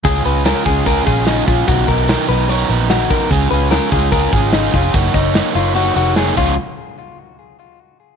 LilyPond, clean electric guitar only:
\new Staff \with { instrumentName = "Clean electric guitar" } { \time 4/4 \key des \mixolydian \tempo 4 = 147 aes'8 ces''8 bes'8 aes'8 bes'8 aes'8 ees'8 f'8 | ges'8 bes'4 ces''8 des''8 ces''8 ges'8 bes'8 | aes'8 ces''8 bes'8 aes'8 bes'8 aes'8 ees'8 f'8 | ges'8 ees'4 f'8 ges'8 ges'8 aes'8 f'8 |
r1 | }